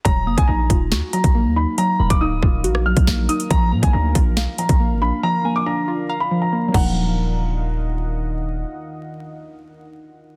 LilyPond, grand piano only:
\new Staff \with { instrumentName = "Grand piano" } { \time 4/4 \key ees \minor \tempo 4 = 139 bes''8. aes''16 bes''4. bes''4 ces'''8 | bes''8. d'''16 ees'''4. f'''4 ees'''8 | bes''8. aes''16 bes''4. bes''4 ces'''8 | bes''8. d'''16 bes''4~ bes''16 ces'''8 bes''8. ges''8~ |
ges''2. r4 | r1 | }